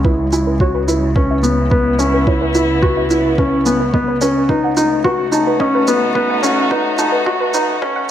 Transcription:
Already playing: C#2 C#3 G#3 F#4
0.05 E4 B4, kick
0.33 E4 G#5, shaker
0.47 B4
0.60 F#4 C#5, kick
0.75 B4
0.88 E4 B4, shaker
1.16 C#4 B4, kick
1.24 B3
1.31 E5
1.43 B3, shaker
1.50 E4
1.71 B3 B4, kick
1.99 C#4 G#5, shaker
2.14 B4
2.27 E4 C#5, kick
2.41 B4
2.55 E4 B4, shaker
2.82 F#4 B4, kick
2.97 E5
3.10 E4, shaker
3.38 C#4 B4, kick
3.66 B3 G#5, shaker
3.80 B4
3.93 C#2 B3 D#5, kick
4.08 B4
4.21 C#4 B4, shaker
4.49 D#4 B4, kick
4.64 F#5
4.77 A3 D#4, shaker
5.04 F#4 B4, kick
5.32 D#4 A5, shaker
5.47 B4
5.58 C#4 D#4 D#5, kick
5.75 B4
5.87 B3 B4, shaker
6.15 B3 B4, kick
6.30 F#5
6.43 C#4, shaker
6.71 D#4 B4, kick
6.99 D#4 A5, shaker
7.12 B4
7.26 F#4 D#5, kick
7.40 B4
7.54 D#4 B4, shaker
7.82 C#4 B4, kick
7.96 F#5

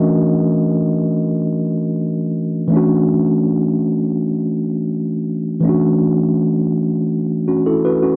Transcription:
Already playing: E3 A3 C#4 D4 F#4 A#4 D#5
2.68 E3 A3
2.72 C#4 D4
2.76 F#4
5.61 E3 A3
5.65 C#4 D4
5.69 F#4
7.48 C#4 F#4
7.66 E4 A4
7.85 F#4 B4
8.03 C#4 F#4

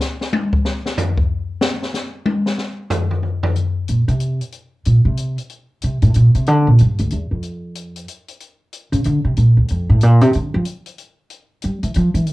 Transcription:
0.00 snare, hi-hat pedal
0.21 snare
0.33 high tom
0.53 kick
0.65 snare
0.86 snare
0.98 floor tom, hi-hat pedal
1.18 kick
1.61 snare
1.83 snare
1.94 snare, hi-hat pedal
2.26 high tom
2.46 snare
2.58 snare
2.90 floor tom, hi-hat pedal
3.11 floor tom
3.23 floor tom
3.43 floor tom
3.56 closed hi-hat
3.88 A#2, closed hi-hat
4.08 C3, closed hi-hat
4.20 closed hi-hat
4.41 closed hi-hat
4.52 closed hi-hat
4.85 A#2, closed hi-hat
5.05 C3
5.17 closed hi-hat
5.38 closed hi-hat
5.49 closed hi-hat
5.81 C3, closed hi-hat
6.02 A2, closed hi-hat
6.14 A#2, closed hi-hat
6.35 C3, closed hi-hat
6.46 D3, closed hi-hat
6.67 A#2
6.79 G2, closed hi-hat
6.99 D2, closed hi-hat
7.11 E2, closed hi-hat
7.31 F2
7.43 closed hi-hat
7.75 closed hi-hat
7.96 closed hi-hat
8.08 closed hi-hat
8.28 closed hi-hat
8.40 closed hi-hat
8.73 closed hi-hat
8.92 C#3, closed hi-hat
9.04 D3, closed hi-hat
9.25 C3
9.37 A#2, closed hi-hat
9.57 D2
9.68 F2, closed hi-hat
9.90 A2
10.01 A#2, closed hi-hat
10.21 C3, closed hi-hat
10.33 D3, closed hi-hat
10.54 F3
10.65 closed hi-hat
10.86 closed hi-hat
10.98 closed hi-hat
11.30 closed hi-hat
11.62 G3, closed hi-hat
11.83 E3, closed hi-hat
11.94 F3, closed hi-hat
12.14 E3, closed hi-hat
12.26 D3, closed hi-hat

